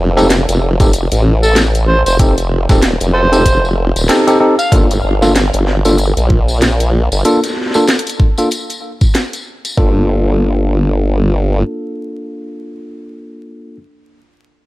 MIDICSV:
0, 0, Header, 1, 5, 480
1, 0, Start_track
1, 0, Key_signature, -2, "minor"
1, 0, Tempo, 631579
1, 1669, Time_signature, 4, 2, 24, 8
1, 11144, End_track
2, 0, Start_track
2, 0, Title_t, "Harmonica"
2, 0, Program_c, 0, 22
2, 1089, Note_on_c, 0, 69, 96
2, 1203, Note_off_c, 0, 69, 0
2, 1429, Note_on_c, 0, 72, 88
2, 1519, Note_off_c, 0, 72, 0
2, 1569, Note_on_c, 0, 72, 76
2, 1633, Note_off_c, 0, 72, 0
2, 2387, Note_on_c, 0, 69, 70
2, 2387, Note_on_c, 0, 72, 100
2, 2436, Note_off_c, 0, 69, 0
2, 2768, Note_off_c, 0, 72, 0
2, 3487, Note_on_c, 0, 77, 94
2, 3588, Note_off_c, 0, 77, 0
2, 11144, End_track
3, 0, Start_track
3, 0, Title_t, "Tine electric piano"
3, 0, Program_c, 1, 4
3, 128, Note_on_c, 1, 60, 97
3, 129, Note_on_c, 1, 63, 88
3, 129, Note_on_c, 1, 67, 87
3, 129, Note_on_c, 1, 69, 104
3, 204, Note_off_c, 1, 60, 0
3, 204, Note_off_c, 1, 63, 0
3, 204, Note_off_c, 1, 67, 0
3, 204, Note_off_c, 1, 69, 0
3, 610, Note_on_c, 1, 63, 86
3, 610, Note_on_c, 1, 67, 85
3, 610, Note_on_c, 1, 69, 104
3, 611, Note_on_c, 1, 60, 93
3, 684, Note_off_c, 1, 67, 0
3, 685, Note_off_c, 1, 60, 0
3, 685, Note_off_c, 1, 63, 0
3, 685, Note_off_c, 1, 69, 0
3, 1668, Note_on_c, 1, 60, 99
3, 1668, Note_on_c, 1, 63, 92
3, 1668, Note_on_c, 1, 67, 90
3, 1668, Note_on_c, 1, 69, 106
3, 1774, Note_off_c, 1, 60, 0
3, 1774, Note_off_c, 1, 63, 0
3, 1774, Note_off_c, 1, 67, 0
3, 1774, Note_off_c, 1, 69, 0
3, 2048, Note_on_c, 1, 63, 85
3, 2049, Note_on_c, 1, 60, 93
3, 2049, Note_on_c, 1, 67, 86
3, 2049, Note_on_c, 1, 69, 102
3, 2124, Note_off_c, 1, 60, 0
3, 2124, Note_off_c, 1, 63, 0
3, 2124, Note_off_c, 1, 67, 0
3, 2124, Note_off_c, 1, 69, 0
3, 2526, Note_on_c, 1, 60, 91
3, 2526, Note_on_c, 1, 63, 86
3, 2526, Note_on_c, 1, 67, 84
3, 2526, Note_on_c, 1, 69, 98
3, 2603, Note_off_c, 1, 60, 0
3, 2603, Note_off_c, 1, 63, 0
3, 2603, Note_off_c, 1, 67, 0
3, 2603, Note_off_c, 1, 69, 0
3, 3107, Note_on_c, 1, 60, 92
3, 3107, Note_on_c, 1, 63, 86
3, 3107, Note_on_c, 1, 67, 82
3, 3108, Note_on_c, 1, 69, 99
3, 3227, Note_off_c, 1, 60, 0
3, 3227, Note_off_c, 1, 63, 0
3, 3227, Note_off_c, 1, 67, 0
3, 3227, Note_off_c, 1, 69, 0
3, 3247, Note_on_c, 1, 60, 88
3, 3247, Note_on_c, 1, 63, 84
3, 3247, Note_on_c, 1, 67, 85
3, 3247, Note_on_c, 1, 69, 99
3, 3323, Note_off_c, 1, 60, 0
3, 3323, Note_off_c, 1, 63, 0
3, 3323, Note_off_c, 1, 67, 0
3, 3323, Note_off_c, 1, 69, 0
3, 3346, Note_on_c, 1, 60, 85
3, 3346, Note_on_c, 1, 63, 78
3, 3346, Note_on_c, 1, 67, 78
3, 3346, Note_on_c, 1, 69, 93
3, 3453, Note_off_c, 1, 60, 0
3, 3453, Note_off_c, 1, 63, 0
3, 3453, Note_off_c, 1, 67, 0
3, 3453, Note_off_c, 1, 69, 0
3, 3587, Note_on_c, 1, 58, 94
3, 3587, Note_on_c, 1, 62, 84
3, 3587, Note_on_c, 1, 69, 106
3, 3588, Note_on_c, 1, 65, 86
3, 3694, Note_off_c, 1, 58, 0
3, 3694, Note_off_c, 1, 62, 0
3, 3694, Note_off_c, 1, 65, 0
3, 3694, Note_off_c, 1, 69, 0
3, 3967, Note_on_c, 1, 58, 89
3, 3967, Note_on_c, 1, 62, 79
3, 3967, Note_on_c, 1, 69, 94
3, 3968, Note_on_c, 1, 65, 83
3, 4043, Note_off_c, 1, 58, 0
3, 4043, Note_off_c, 1, 62, 0
3, 4043, Note_off_c, 1, 65, 0
3, 4043, Note_off_c, 1, 69, 0
3, 4448, Note_on_c, 1, 58, 84
3, 4448, Note_on_c, 1, 62, 79
3, 4448, Note_on_c, 1, 65, 77
3, 4448, Note_on_c, 1, 69, 95
3, 4523, Note_off_c, 1, 58, 0
3, 4523, Note_off_c, 1, 62, 0
3, 4524, Note_off_c, 1, 65, 0
3, 4524, Note_off_c, 1, 69, 0
3, 5510, Note_on_c, 1, 58, 93
3, 5510, Note_on_c, 1, 62, 85
3, 5510, Note_on_c, 1, 65, 86
3, 5510, Note_on_c, 1, 69, 104
3, 5615, Note_off_c, 1, 58, 0
3, 5615, Note_off_c, 1, 62, 0
3, 5615, Note_off_c, 1, 65, 0
3, 5615, Note_off_c, 1, 69, 0
3, 5891, Note_on_c, 1, 58, 86
3, 5891, Note_on_c, 1, 62, 81
3, 5891, Note_on_c, 1, 65, 78
3, 5891, Note_on_c, 1, 69, 98
3, 5965, Note_off_c, 1, 58, 0
3, 5965, Note_off_c, 1, 62, 0
3, 5965, Note_off_c, 1, 65, 0
3, 5965, Note_off_c, 1, 69, 0
3, 6371, Note_on_c, 1, 58, 82
3, 6371, Note_on_c, 1, 62, 77
3, 6371, Note_on_c, 1, 65, 79
3, 6371, Note_on_c, 1, 69, 95
3, 6445, Note_off_c, 1, 58, 0
3, 6445, Note_off_c, 1, 62, 0
3, 6445, Note_off_c, 1, 65, 0
3, 6445, Note_off_c, 1, 69, 0
3, 7430, Note_on_c, 1, 58, 78
3, 7430, Note_on_c, 1, 65, 72
3, 7431, Note_on_c, 1, 62, 71
3, 7431, Note_on_c, 1, 69, 87
3, 10459, Note_off_c, 1, 58, 0
3, 10459, Note_off_c, 1, 62, 0
3, 10459, Note_off_c, 1, 65, 0
3, 10459, Note_off_c, 1, 69, 0
3, 11144, End_track
4, 0, Start_track
4, 0, Title_t, "Wobble bass"
4, 0, Program_c, 2, 39
4, 0, Note_on_c, 2, 29, 98
4, 348, Note_off_c, 2, 29, 0
4, 370, Note_on_c, 2, 29, 96
4, 827, Note_off_c, 2, 29, 0
4, 850, Note_on_c, 2, 33, 98
4, 1547, Note_off_c, 2, 33, 0
4, 1568, Note_on_c, 2, 29, 97
4, 2026, Note_off_c, 2, 29, 0
4, 2047, Note_on_c, 2, 27, 98
4, 2266, Note_off_c, 2, 27, 0
4, 2288, Note_on_c, 2, 29, 96
4, 2986, Note_off_c, 2, 29, 0
4, 3008, Note_on_c, 2, 27, 101
4, 3108, Note_off_c, 2, 27, 0
4, 3587, Note_on_c, 2, 31, 96
4, 3812, Note_off_c, 2, 31, 0
4, 3828, Note_on_c, 2, 31, 95
4, 4186, Note_off_c, 2, 31, 0
4, 4210, Note_on_c, 2, 31, 90
4, 4667, Note_off_c, 2, 31, 0
4, 4689, Note_on_c, 2, 34, 93
4, 5387, Note_off_c, 2, 34, 0
4, 5410, Note_on_c, 2, 31, 90
4, 5493, Note_off_c, 2, 31, 0
4, 7428, Note_on_c, 2, 31, 93
4, 8838, Note_off_c, 2, 31, 0
4, 11144, End_track
5, 0, Start_track
5, 0, Title_t, "Drums"
5, 130, Note_on_c, 9, 40, 59
5, 140, Note_on_c, 9, 54, 70
5, 206, Note_off_c, 9, 40, 0
5, 216, Note_off_c, 9, 54, 0
5, 225, Note_on_c, 9, 54, 59
5, 231, Note_on_c, 9, 38, 115
5, 231, Note_on_c, 9, 42, 81
5, 301, Note_off_c, 9, 54, 0
5, 307, Note_off_c, 9, 38, 0
5, 307, Note_off_c, 9, 42, 0
5, 371, Note_on_c, 9, 42, 55
5, 373, Note_on_c, 9, 54, 36
5, 447, Note_off_c, 9, 42, 0
5, 449, Note_off_c, 9, 54, 0
5, 608, Note_on_c, 9, 36, 102
5, 609, Note_on_c, 9, 54, 81
5, 610, Note_on_c, 9, 42, 36
5, 684, Note_off_c, 9, 36, 0
5, 685, Note_off_c, 9, 54, 0
5, 686, Note_off_c, 9, 42, 0
5, 710, Note_on_c, 9, 42, 78
5, 713, Note_on_c, 9, 54, 64
5, 786, Note_off_c, 9, 42, 0
5, 789, Note_off_c, 9, 54, 0
5, 849, Note_on_c, 9, 42, 52
5, 860, Note_on_c, 9, 54, 38
5, 925, Note_off_c, 9, 42, 0
5, 936, Note_off_c, 9, 54, 0
5, 1087, Note_on_c, 9, 54, 71
5, 1163, Note_off_c, 9, 54, 0
5, 1187, Note_on_c, 9, 38, 114
5, 1187, Note_on_c, 9, 42, 80
5, 1191, Note_on_c, 9, 54, 66
5, 1263, Note_off_c, 9, 38, 0
5, 1263, Note_off_c, 9, 42, 0
5, 1267, Note_off_c, 9, 54, 0
5, 1329, Note_on_c, 9, 42, 53
5, 1331, Note_on_c, 9, 54, 36
5, 1405, Note_off_c, 9, 42, 0
5, 1407, Note_off_c, 9, 54, 0
5, 1567, Note_on_c, 9, 54, 87
5, 1568, Note_on_c, 9, 42, 36
5, 1643, Note_off_c, 9, 54, 0
5, 1644, Note_off_c, 9, 42, 0
5, 1667, Note_on_c, 9, 36, 116
5, 1667, Note_on_c, 9, 42, 85
5, 1672, Note_on_c, 9, 54, 70
5, 1743, Note_off_c, 9, 36, 0
5, 1743, Note_off_c, 9, 42, 0
5, 1748, Note_off_c, 9, 54, 0
5, 1807, Note_on_c, 9, 42, 53
5, 1810, Note_on_c, 9, 54, 38
5, 1883, Note_off_c, 9, 42, 0
5, 1886, Note_off_c, 9, 54, 0
5, 2047, Note_on_c, 9, 36, 104
5, 2048, Note_on_c, 9, 40, 59
5, 2048, Note_on_c, 9, 42, 39
5, 2048, Note_on_c, 9, 54, 76
5, 2123, Note_off_c, 9, 36, 0
5, 2124, Note_off_c, 9, 40, 0
5, 2124, Note_off_c, 9, 42, 0
5, 2124, Note_off_c, 9, 54, 0
5, 2147, Note_on_c, 9, 38, 116
5, 2147, Note_on_c, 9, 42, 83
5, 2148, Note_on_c, 9, 54, 62
5, 2223, Note_off_c, 9, 38, 0
5, 2223, Note_off_c, 9, 42, 0
5, 2224, Note_off_c, 9, 54, 0
5, 2284, Note_on_c, 9, 54, 39
5, 2289, Note_on_c, 9, 42, 58
5, 2360, Note_off_c, 9, 54, 0
5, 2365, Note_off_c, 9, 42, 0
5, 2529, Note_on_c, 9, 42, 38
5, 2532, Note_on_c, 9, 54, 73
5, 2605, Note_off_c, 9, 42, 0
5, 2608, Note_off_c, 9, 54, 0
5, 2626, Note_on_c, 9, 36, 62
5, 2628, Note_on_c, 9, 42, 79
5, 2630, Note_on_c, 9, 54, 64
5, 2702, Note_off_c, 9, 36, 0
5, 2704, Note_off_c, 9, 42, 0
5, 2706, Note_off_c, 9, 54, 0
5, 2773, Note_on_c, 9, 54, 36
5, 2849, Note_off_c, 9, 54, 0
5, 3010, Note_on_c, 9, 42, 38
5, 3013, Note_on_c, 9, 54, 74
5, 3086, Note_off_c, 9, 42, 0
5, 3089, Note_off_c, 9, 54, 0
5, 3108, Note_on_c, 9, 54, 67
5, 3109, Note_on_c, 9, 38, 115
5, 3109, Note_on_c, 9, 42, 84
5, 3184, Note_off_c, 9, 54, 0
5, 3185, Note_off_c, 9, 38, 0
5, 3185, Note_off_c, 9, 42, 0
5, 3250, Note_on_c, 9, 42, 55
5, 3252, Note_on_c, 9, 54, 37
5, 3326, Note_off_c, 9, 42, 0
5, 3328, Note_off_c, 9, 54, 0
5, 3487, Note_on_c, 9, 54, 76
5, 3489, Note_on_c, 9, 42, 38
5, 3563, Note_off_c, 9, 54, 0
5, 3565, Note_off_c, 9, 42, 0
5, 3586, Note_on_c, 9, 54, 62
5, 3588, Note_on_c, 9, 36, 117
5, 3590, Note_on_c, 9, 42, 82
5, 3662, Note_off_c, 9, 54, 0
5, 3664, Note_off_c, 9, 36, 0
5, 3666, Note_off_c, 9, 42, 0
5, 3729, Note_on_c, 9, 54, 44
5, 3731, Note_on_c, 9, 42, 52
5, 3805, Note_off_c, 9, 54, 0
5, 3807, Note_off_c, 9, 42, 0
5, 3968, Note_on_c, 9, 54, 70
5, 3972, Note_on_c, 9, 40, 56
5, 4044, Note_off_c, 9, 54, 0
5, 4048, Note_off_c, 9, 40, 0
5, 4068, Note_on_c, 9, 54, 66
5, 4071, Note_on_c, 9, 38, 115
5, 4071, Note_on_c, 9, 42, 80
5, 4144, Note_off_c, 9, 54, 0
5, 4147, Note_off_c, 9, 38, 0
5, 4147, Note_off_c, 9, 42, 0
5, 4205, Note_on_c, 9, 54, 34
5, 4210, Note_on_c, 9, 42, 57
5, 4281, Note_off_c, 9, 54, 0
5, 4286, Note_off_c, 9, 42, 0
5, 4310, Note_on_c, 9, 38, 35
5, 4386, Note_off_c, 9, 38, 0
5, 4445, Note_on_c, 9, 54, 80
5, 4450, Note_on_c, 9, 42, 36
5, 4521, Note_off_c, 9, 54, 0
5, 4526, Note_off_c, 9, 42, 0
5, 4542, Note_on_c, 9, 54, 61
5, 4548, Note_on_c, 9, 42, 80
5, 4618, Note_off_c, 9, 54, 0
5, 4624, Note_off_c, 9, 42, 0
5, 4690, Note_on_c, 9, 42, 52
5, 4691, Note_on_c, 9, 54, 38
5, 4766, Note_off_c, 9, 42, 0
5, 4767, Note_off_c, 9, 54, 0
5, 4789, Note_on_c, 9, 36, 102
5, 4865, Note_off_c, 9, 36, 0
5, 4927, Note_on_c, 9, 54, 81
5, 5003, Note_off_c, 9, 54, 0
5, 5027, Note_on_c, 9, 54, 64
5, 5031, Note_on_c, 9, 38, 113
5, 5031, Note_on_c, 9, 42, 80
5, 5103, Note_off_c, 9, 54, 0
5, 5107, Note_off_c, 9, 38, 0
5, 5107, Note_off_c, 9, 42, 0
5, 5170, Note_on_c, 9, 42, 54
5, 5173, Note_on_c, 9, 54, 40
5, 5246, Note_off_c, 9, 42, 0
5, 5249, Note_off_c, 9, 54, 0
5, 5410, Note_on_c, 9, 54, 77
5, 5411, Note_on_c, 9, 42, 36
5, 5486, Note_off_c, 9, 54, 0
5, 5487, Note_off_c, 9, 42, 0
5, 5508, Note_on_c, 9, 54, 65
5, 5510, Note_on_c, 9, 42, 80
5, 5584, Note_off_c, 9, 54, 0
5, 5586, Note_off_c, 9, 42, 0
5, 5651, Note_on_c, 9, 38, 16
5, 5651, Note_on_c, 9, 42, 51
5, 5651, Note_on_c, 9, 54, 37
5, 5676, Note_off_c, 9, 38, 0
5, 5676, Note_on_c, 9, 38, 18
5, 5701, Note_off_c, 9, 38, 0
5, 5701, Note_on_c, 9, 38, 21
5, 5727, Note_off_c, 9, 38, 0
5, 5727, Note_off_c, 9, 42, 0
5, 5727, Note_off_c, 9, 54, 0
5, 5727, Note_on_c, 9, 38, 22
5, 5751, Note_off_c, 9, 38, 0
5, 5751, Note_on_c, 9, 38, 25
5, 5787, Note_off_c, 9, 38, 0
5, 5787, Note_on_c, 9, 38, 28
5, 5823, Note_off_c, 9, 38, 0
5, 5823, Note_on_c, 9, 38, 30
5, 5858, Note_off_c, 9, 38, 0
5, 5858, Note_on_c, 9, 38, 33
5, 5882, Note_on_c, 9, 54, 79
5, 5893, Note_on_c, 9, 40, 54
5, 5934, Note_off_c, 9, 38, 0
5, 5958, Note_off_c, 9, 54, 0
5, 5969, Note_off_c, 9, 40, 0
5, 5984, Note_on_c, 9, 54, 66
5, 5993, Note_on_c, 9, 38, 113
5, 5993, Note_on_c, 9, 42, 77
5, 6060, Note_off_c, 9, 54, 0
5, 6069, Note_off_c, 9, 38, 0
5, 6069, Note_off_c, 9, 42, 0
5, 6073, Note_on_c, 9, 42, 61
5, 6130, Note_on_c, 9, 54, 36
5, 6133, Note_off_c, 9, 42, 0
5, 6133, Note_on_c, 9, 42, 53
5, 6152, Note_off_c, 9, 42, 0
5, 6152, Note_on_c, 9, 42, 52
5, 6206, Note_off_c, 9, 54, 0
5, 6228, Note_off_c, 9, 42, 0
5, 6229, Note_on_c, 9, 36, 102
5, 6305, Note_off_c, 9, 36, 0
5, 6366, Note_on_c, 9, 54, 80
5, 6374, Note_on_c, 9, 42, 37
5, 6442, Note_off_c, 9, 54, 0
5, 6450, Note_off_c, 9, 42, 0
5, 6467, Note_on_c, 9, 54, 64
5, 6474, Note_on_c, 9, 42, 76
5, 6543, Note_off_c, 9, 54, 0
5, 6550, Note_off_c, 9, 42, 0
5, 6608, Note_on_c, 9, 54, 38
5, 6613, Note_on_c, 9, 42, 52
5, 6684, Note_off_c, 9, 54, 0
5, 6689, Note_off_c, 9, 42, 0
5, 6848, Note_on_c, 9, 54, 69
5, 6850, Note_on_c, 9, 36, 99
5, 6924, Note_off_c, 9, 54, 0
5, 6926, Note_off_c, 9, 36, 0
5, 6949, Note_on_c, 9, 54, 59
5, 6953, Note_on_c, 9, 38, 114
5, 6953, Note_on_c, 9, 42, 78
5, 7025, Note_off_c, 9, 54, 0
5, 7029, Note_off_c, 9, 38, 0
5, 7029, Note_off_c, 9, 42, 0
5, 7093, Note_on_c, 9, 42, 52
5, 7096, Note_on_c, 9, 54, 37
5, 7169, Note_off_c, 9, 42, 0
5, 7172, Note_off_c, 9, 54, 0
5, 7332, Note_on_c, 9, 54, 76
5, 7333, Note_on_c, 9, 42, 35
5, 7408, Note_off_c, 9, 54, 0
5, 7409, Note_off_c, 9, 42, 0
5, 7429, Note_on_c, 9, 36, 99
5, 7505, Note_off_c, 9, 36, 0
5, 11144, End_track
0, 0, End_of_file